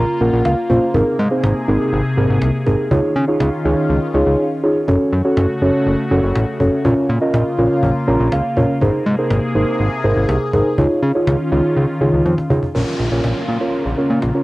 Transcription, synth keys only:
0.00 0.19 A#5 medium
0.21 0.50 A#3 medium
0.21 0.50 C#4 medium
0.21 0.50 F4 medium
0.21 0.50 A#4 loud
0.21 0.44 F#5 medium
0.45 0.91 F5 medium
0.70 0.85 A#3 medium
0.70 0.85 C#4 medium
0.70 0.85 F4 medium
0.70 0.85 C5 loud
0.94 1.16 C4 medium
0.94 1.16 D#4 medium
0.94 1.16 G#4 medium
0.94 1.17 A#4 loud
1.31 1.53 C4 medium
1.31 1.53 D#4 medium
1.31 1.53 G#4 medium
1.31 1.53 C5 medium
1.68 1.98 C4 medium
1.68 1.98 D#4 medium
1.68 1.98 G#4 medium
1.68 1.98 A#4 medium
2.17 2.47 C4 medium
2.17 2.47 D#4 medium
2.17 2.47 G#4 medium
2.17 2.47 A#4 loud
2.66 2.81 C4 medium
2.66 2.81 D#4 medium
2.66 2.81 G#4 medium
2.66 2.81 A#4 loud
2.91 3.13 D#4 medium
2.91 3.13 F4 medium
2.91 3.13 G#4 medium
2.91 3.13 C#5 loud
3.28 3.50 D#4 medium
3.28 3.50 F4 medium
3.28 3.50 G#4 medium
3.28 3.50 C#5 medium
3.65 3.94 D#4 medium
3.65 3.95 F4 medium
3.65 3.95 G#4 medium
3.65 3.95 C#5 loud
4.14 4.44 D#4 medium
4.14 4.44 F4 medium
4.14 4.44 G#4 medium
4.14 4.44 C#5 medium
4.63 4.78 D#4 medium
4.63 4.78 F4 medium
4.63 4.78 G#4 medium
4.63 4.78 C#5 medium
4.88 5.10 C#4 medium
4.88 5.10 F#4 medium
4.88 5.10 A4 medium
4.88 5.10 C#5 loud
5.25 5.47 C#4 medium
5.25 5.47 F#4 medium
5.25 5.47 A4 medium
5.25 5.47 C#5 medium
5.62 5.91 C#4 medium
5.62 5.91 F#4 medium
5.62 5.91 A4 medium
5.62 5.91 C#5 loud
6.11 6.40 C#4 medium
6.11 6.40 F#4 medium
6.11 6.40 A4 medium
6.11 6.40 C#5 loud
6.60 6.75 C#4 medium
6.60 6.75 F#4 medium
6.60 6.75 A4 medium
6.60 6.75 C#5 loud
6.85 7.07 C#4 medium
6.85 7.07 F4 medium
6.85 7.07 A#4 medium
6.85 7.07 C#5 medium
7.21 7.44 C#4 medium
7.21 7.44 F4 medium
7.21 7.44 A#4 medium
7.21 7.44 D#5 medium
7.58 7.88 C#4 medium
7.58 7.88 F4 medium
7.58 7.88 A#4 medium
7.58 7.88 C#5 loud
8.08 8.37 C#4 medium
8.08 8.37 F4 medium
8.08 8.37 A#4 medium
8.08 8.37 C#5 loud
8.08 8.30 A#5 medium
8.32 8.78 F5 medium
8.57 8.71 C#4 medium
8.57 8.72 F4 medium
8.57 8.72 A#4 medium
8.57 8.72 C#5 loud
8.81 9.03 D#4 medium
8.81 9.04 G#4 medium
8.81 9.04 A#4 medium
8.81 9.03 C5 loud
9.19 9.41 D#4 medium
9.19 9.41 G#4 medium
9.19 9.41 A#4 medium
9.19 9.41 C5 loud
9.55 9.85 D#4 medium
9.55 9.85 G#4 medium
9.55 9.85 A#4 medium
9.55 9.85 C5 loud
10.04 10.34 D#4 medium
10.04 10.34 G#4 medium
10.04 10.34 A#4 medium
10.04 10.34 C5 loud
10.53 10.68 D#4 medium
10.53 10.68 G#4 medium
10.53 10.68 A#4 medium
10.53 10.68 C5 loud
10.78 11.00 D#4 medium
10.78 11.00 F4 medium
10.78 11.00 G#4 medium
10.78 11.00 C#5 loud
11.15 11.37 D#4 medium
11.15 11.37 F4 medium
11.15 11.37 G#4 medium
11.15 11.37 C#5 medium
11.52 11.81 D#4 medium
11.52 11.81 F4 medium
11.52 11.81 G#4 medium
11.52 11.81 C#5 loud
12.01 12.30 D#4 medium
12.01 12.30 F4 medium
12.01 12.30 G#4 medium
12.01 12.30 C#5 loud
12.50 12.65 D#4 medium
12.50 12.65 F4 medium
12.50 12.65 G#4 medium
12.50 12.65 C#5 medium
12.75 12.97 C#4 medium
12.75 12.97 F4 medium
12.75 12.97 A#4 medium
12.75 12.97 C#5 medium
13.12 13.41 C#4 medium
13.12 13.41 F4 medium
13.12 13.41 A#4 medium
13.12 13.41 C#5 medium
13.61 13.83 C#4 medium
13.61 13.83 F4 medium
13.61 13.83 A#4 medium
13.61 13.83 C#5 medium
13.97 14.20 C#4 medium
13.97 14.20 F4 medium
13.97 14.20 A#4 medium
13.97 14.20 C#5 medium
14.35 14.43 C#4 medium
14.35 14.43 F4 medium
14.35 14.43 A#4 medium
14.35 14.43 C#5 medium

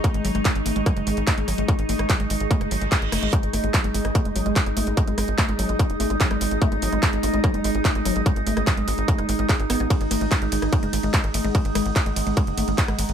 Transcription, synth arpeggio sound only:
0.04 0.11 A3 medium
0.14 0.21 G#3 medium
0.25 0.31 F#3 medium
0.35 0.39 G#3 medium
0.66 0.72 A3 medium
0.76 0.83 G#3 medium
0.86 0.93 F#3 medium
0.97 1.01 G#3 medium
1.07 1.13 G#3 medium
1.27 1.34 A3 medium
1.38 1.44 G#3 medium
1.48 1.55 F#3 medium
1.58 1.62 G#3 medium
1.68 1.75 G#3 medium
1.89 1.96 A3 medium
1.99 2.06 G#3 medium
2.10 2.16 F#3 medium
2.20 2.24 G#3 medium
2.30 2.37 G#3 medium
2.51 2.57 A3 medium
2.61 2.68 G#3 medium
2.71 2.78 F#3 medium
2.81 2.85 G#3 medium
2.92 2.98 G#3 medium
3.12 3.19 A3 medium
3.23 3.29 G#3 medium
3.33 3.40 G#3 medium
3.53 3.60 A3 medium
3.64 3.68 G#3 medium
3.74 3.81 F#3 medium
3.84 3.88 G#3 medium
3.95 4.01 G#3 medium
4.15 4.22 A3 medium
4.25 4.29 G#3 medium
4.36 4.42 F#3 medium
4.46 4.50 G#3 medium
4.56 4.63 G#3 medium
4.77 4.83 A3 medium
4.87 4.91 G#3 medium
4.97 5.04 F#3 medium
5.08 5.12 G#3 medium
5.18 5.24 G#3 medium
5.38 5.45 A3 medium
5.49 5.53 G#3 medium
5.59 5.66 F#3 medium
5.69 5.73 G#3 medium
5.79 5.86 G#3 medium
6.00 6.07 A3 medium
6.10 6.14 G#3 medium
6.21 6.27 F#3 medium
6.31 6.35 G#3 medium
6.41 6.48 G#3 medium
6.62 6.68 A3 medium
6.72 6.76 G#3 medium
6.82 6.89 F#3 medium
6.92 6.96 G#3 medium
7.03 7.09 G#3 medium
7.23 7.30 A3 medium
7.33 7.38 G#3 medium
7.44 7.50 F#3 medium
7.54 7.58 G#3 medium
7.64 7.71 G#3 medium
7.85 7.92 A3 medium
7.95 7.99 G#3 medium
8.05 8.12 F#3 medium
8.16 8.20 G#3 medium
8.26 8.33 G#3 medium
8.47 8.53 A3 medium
8.57 8.61 G#3 medium
8.67 8.74 F#3 medium
8.77 8.81 G#3 medium
8.88 8.94 G#3 medium
9.08 9.15 A3 medium
9.18 9.22 G#3 medium
9.29 9.38 G#3 medium
9.39 9.43 G#3 medium
9.49 9.53 G#4 medium
9.70 9.77 B3 loud
9.80 9.87 B3 medium
9.90 9.97 G#3 medium
10.11 10.18 A3 medium
10.21 10.25 G#3 medium
10.32 10.38 G#3 medium
10.42 10.46 G#3 medium
10.52 10.59 G#3 medium
10.73 10.79 A3 medium
10.83 10.87 G#3 medium
10.93 11.00 G#3 medium
11.03 11.07 G#3 medium
11.14 11.20 G#3 medium
11.34 11.41 A3 medium
11.45 11.48 G#3 medium
11.55 11.61 G#3 medium
11.65 11.69 G#3 medium
11.75 11.82 G#3 medium
11.96 12.03 A3 medium
12.06 12.10 G#3 medium
12.16 12.23 G#3 medium
12.27 12.31 G#3 medium
12.37 12.44 G#3 medium
12.57 12.64 A3 medium
12.68 12.72 G#3 medium
12.78 12.85 G#3 medium
12.88 12.92 G#3 medium
12.99 13.05 G#3 medium

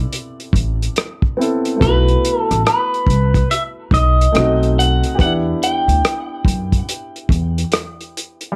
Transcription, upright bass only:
0.54 0.87 A1 medium
1.82 2.14 B1 medium
2.51 2.63 A1 medium
3.07 3.40 C2 medium
3.92 4.25 B1 medium
4.35 5.01 B1 medium
5.20 5.52 E2 loud
5.88 6.00 D2 medium
6.45 6.78 F#2 medium
7.30 7.63 E2 medium

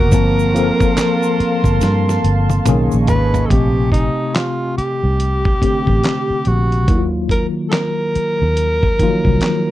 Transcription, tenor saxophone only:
0.00 2.63 A#4 loud
3.09 3.47 B4 loud
3.46 3.91 G4 medium
3.46 3.51 A4 medium
3.92 4.36 D#4 medium
4.35 4.77 F4 medium
4.78 6.49 G4 medium
6.47 7.07 F#4 medium
7.31 7.47 A#4 medium
7.69 7.74 A4 medium
7.69 9.71 A#4 loud

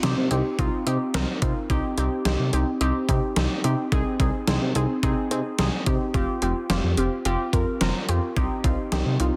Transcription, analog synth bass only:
0.03 0.14 C2 loud
0.17 0.28 C3 loud
0.31 0.42 C2 loud
0.59 0.70 C2 loud
0.86 0.98 C3 loud
1.14 1.25 C2 loud
1.42 1.53 C3 loud
1.70 1.81 C2 loud
1.98 2.09 C2 medium
2.25 2.36 C2 loud
2.39 2.50 C3 medium
2.53 2.64 C2 loud
2.81 2.92 C2 loud
3.09 3.20 C3 loud
3.36 3.47 C2 loud
3.64 3.75 C3 loud
3.92 4.03 C2 loud
4.20 4.31 C2 loud
4.48 4.59 C2 medium
4.61 4.72 C3 loud
4.75 4.86 C2 loud
5.03 5.14 C2 loud
5.31 5.42 C3 loud
5.59 5.70 C2 loud
5.87 5.98 C3 medium
6.14 6.25 F1 loud
6.42 6.53 F1 loud
6.70 6.81 F1 medium
6.84 6.95 F2 loud
6.97 7.09 F1 loud
7.25 7.36 F1 loud
7.53 7.64 F2 medium
7.81 7.92 F1 loud
8.09 8.20 F2 loud
8.37 8.48 C2 loud
8.64 8.75 C2 loud
8.92 9.03 C2 medium
9.06 9.17 C3 loud
9.20 9.31 C2 loud

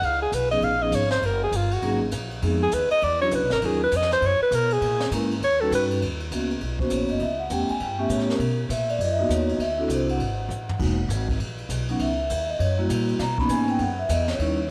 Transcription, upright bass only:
0.02 0.31 C#2 medium
0.32 0.61 B1 medium
0.61 0.91 A#1 medium
0.92 1.21 G#1 medium
1.22 1.51 F#1 medium
1.52 1.81 G1 medium
1.82 2.11 G#1 medium
2.12 2.41 A#1 medium
2.42 2.71 F2 medium
2.72 2.90 D#2 medium
2.91 muted upright bass stroke soft
3.02 3.31 E2 medium
3.32 3.42 C#2 medium
3.42 3.52 B1 medium
3.52 3.61 G#1 medium
3.62 3.91 D#2 medium
3.92 4.21 F2 medium
4.21 4.39 F#2 medium
4.40 muted upright bass stroke soft
4.51 4.80 B2 loud
4.81 5.10 A#2 medium
5.11 5.40 G#2 loud
5.40 5.70 D#2 medium
5.71 6.00 G2 loud
6.02 6.31 D#2 medium
6.31 6.60 C#2 medium
6.61 6.90 B1 medium
6.91 7.02 A#1 medium
7.00 7.09 G#1 medium
7.10 7.20 F#1 medium
7.20 7.50 C#2 medium
7.50 7.68 E2 medium
7.70 muted upright bass stroke soft
7.80 8.08 G2 medium
8.09 8.38 A2 medium
8.39 8.68 B2 medium
8.69 8.98 A#2 medium
8.99 9.28 F#2 medium
9.29 9.58 D#2 medium
9.59 9.88 D2 medium
9.88 10.19 C2 medium
10.19 10.48 G#1 medium
10.49 10.79 A1 medium
10.79 11.08 E1 medium
11.09 11.38 G#1 loud
11.38 11.68 A#1 medium
11.69 11.99 B1 medium
11.99 12.29 C#2 medium
12.30 12.59 D#2 medium
12.59 12.89 F#2 medium
12.89 13.19 A#2 loud
13.19 13.48 B2 medium
13.49 13.78 G#2 medium
13.79 14.08 F#2 medium
14.09 14.38 E2 loud
14.39 14.68 D#2 medium

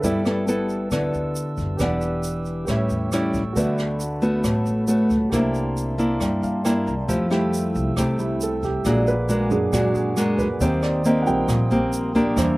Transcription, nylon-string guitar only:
0.04 0.90 G3 medium
0.04 0.22 B3 medium
0.04 0.23 E4 medium
0.04 0.23 A4 medium
0.26 0.44 B3 medium
0.26 0.45 E4 medium
0.26 0.45 A4 medium
0.48 0.88 B3 medium
0.48 0.89 E4 medium
0.48 0.89 A4 medium
0.92 1.78 D3 medium
0.92 1.76 B3 medium
0.92 1.77 E4 medium
0.92 1.77 A4 medium
1.80 2.66 E3 medium
1.80 2.65 B3 medium
1.80 2.65 D4 medium
1.80 2.65 G4 medium
2.68 3.54 A2 medium
2.68 3.09 G3 soft
2.68 3.09 C#4 soft
2.68 3.09 E4 medium
3.13 3.42 G3 medium
3.13 3.42 C#4 medium
3.13 3.42 E4 medium
3.56 4.42 D3 medium
3.56 4.00 A3 medium
3.56 4.00 B3 medium
3.56 4.01 F#4 medium
4.22 4.85 A3 medium
4.22 4.85 B3 medium
4.22 4.85 F#4 medium
4.44 5.30 A2 medium
4.88 5.17 A3 medium
4.88 5.17 B3 medium
4.88 5.17 F#4 medium
5.32 6.18 C3 medium
5.32 5.95 A#3 soft
5.32 5.95 D4 medium
5.32 5.96 E4 medium
5.98 6.61 A#3 medium
5.98 6.61 D4 medium
5.98 6.61 E4 medium
6.21 7.07 G3 soft
6.65 6.93 A#3 medium
6.65 6.93 D4 medium
6.65 6.93 E4 medium
7.08 7.94 F3 medium
7.08 7.27 A3 medium
7.08 7.27 E4 medium
7.08 7.28 G4 medium
7.30 7.93 A3 medium
7.30 7.93 E4 medium
7.30 7.94 G4 medium
7.97 8.83 C3 medium
7.97 8.56 A3 medium
7.97 8.56 E4 soft
7.97 8.57 G4 medium
8.86 9.71 A#2 medium
8.86 9.14 G#3 medium
8.86 9.14 D4 medium
8.86 9.14 F#4 medium
9.29 9.57 G#3 medium
9.29 9.57 D4 medium
9.29 9.58 F#4 medium
9.73 10.59 A#2 medium
9.73 10.13 G#3 medium
9.73 10.14 D4 medium
9.73 10.14 F#4 medium
10.17 10.47 G#3 medium
10.17 10.47 D4 medium
10.17 10.47 F#4 medium
10.61 11.47 D#3 medium
10.61 11.02 A#3 medium
10.61 11.02 C4 medium
10.61 11.02 G4 medium
11.05 11.49 A#3 medium
11.05 11.49 C4 medium
11.05 11.49 G4 medium
11.48 12.35 A#2 medium
11.71 12.12 A#3 medium
11.71 12.12 C4 medium
11.71 12.12 G4 medium
12.15 12.58 A#3 medium
12.15 12.58 D4 medium
12.15 12.58 G4 medium
12.37 12.58 E3 medium

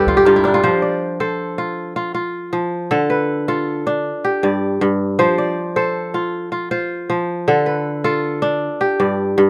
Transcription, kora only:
0.00 0.25 G2 medium
0.00 0.44 D4 medium
0.00 0.16 G4 medium
0.00 1.20 A4 medium
0.00 0.70 B4 medium
0.00 0.53 D5 medium
0.08 0.26 F4 medium
0.17 1.58 G4 medium
0.26 0.69 G2 medium
0.26 0.54 F4 medium
0.36 0.60 E4 medium
0.45 2.13 D4 medium
0.54 1.58 F4 medium
0.63 2.51 F3 medium
0.63 1.20 C5 medium
0.82 1.93 D5 soft
1.20 2.52 A4 medium
1.20 2.39 C5 medium
1.58 1.96 F4 medium
1.96 2.14 F4 medium
2.14 3.48 F4 medium
2.53 2.96 F3 medium
2.91 4.10 D3 medium
2.91 3.48 A4 medium
3.10 4.33 B4 soft
3.48 5.00 F4 medium
3.48 4.80 A4 medium
3.87 5.55 D4 medium
4.24 5.66 G4 medium
4.43 4.80 G2 medium
4.43 5.38 D5 medium
4.81 5.24 G2 medium
5.19 7.08 F3 medium
5.19 5.76 C5 medium
5.38 6.49 D5 soft
5.76 7.08 A4 medium
5.76 6.71 C5 medium
6.14 6.51 F4 medium
6.52 6.71 F4 medium
6.71 8.04 F4 medium
6.71 7.72 C5 medium
7.10 7.53 F3 medium
7.48 8.67 D3 medium
7.48 8.04 A4 medium
7.66 8.89 B4 soft
8.04 9.50 F4 medium
8.04 9.36 A4 medium
8.42 9.50 D4 medium
8.81 9.50 G4 medium
9.00 9.36 G2 medium
9.00 9.50 D5 soft
9.38 9.50 G2 medium

